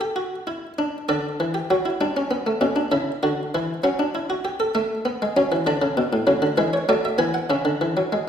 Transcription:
Already playing: D3 D5
0.01 G4
0.16 F#4
0.47 E4
0.79 D4
1.09 D3 A4 D5
1.40 E3
1.54 G4
1.71 F#3 F#4
1.85 E4
2.01 G3 D4
2.17 C#4
2.31 B3
2.47 A3
2.61 B2 C#4
2.76 D4
2.92 C#3 E4 E5
3.23 D3 F#4
3.55 E3 E4
3.84 F#3 C#4 F#5
3.99 D4
4.15 E4
4.30 F#4
4.45 G4
4.60 A4
4.75 A3 E5
5.05 B3
5.22 G#3
5.37 F#3 C#4
5.52 E3
5.67 D3 D4 D5
5.82 C#3
5.97 B2
6.13 A2
6.27 C#3 F#3
6.42 D3
6.57 E3 G#3 B4
6.73 C#5
6.89 F#3 A3 D5
7.05 E5
7.18 E3 B3 G#5
7.34 F#5
7.50 C#3 C#4 E5
7.65 D3
7.81 E3
7.97 F#3
8.12 G#3

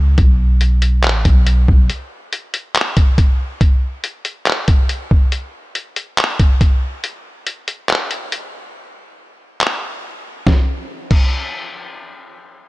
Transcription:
Already playing: C#2
0.18 B1, kick, closed hi-hat
0.61 closed hi-hat
0.82 closed hi-hat
1.04 A1, clap, closed hi-hat
1.25 B1, kick, closed hi-hat
1.47 closed hi-hat
1.68 B1, kick
1.90 closed hi-hat
2.33 closed hi-hat
2.54 closed hi-hat
2.75 clap, closed hi-hat
2.97 kick, closed hi-hat
3.18 kick, closed hi-hat
3.61 kick, closed hi-hat
4.04 closed hi-hat
4.25 closed hi-hat
4.46 clap, closed hi-hat
4.68 kick, closed hi-hat
4.89 closed hi-hat
5.11 kick
5.32 closed hi-hat
5.75 closed hi-hat
5.96 closed hi-hat
6.18 clap, closed hi-hat
6.39 kick, closed hi-hat
6.61 kick, closed hi-hat
7.04 closed hi-hat
7.47 closed hi-hat
7.68 closed hi-hat
7.89 clap, closed hi-hat
8.11 closed hi-hat
8.32 closed hi-hat
9.61 clap
10.47 kick, snare
11.11 kick, crash

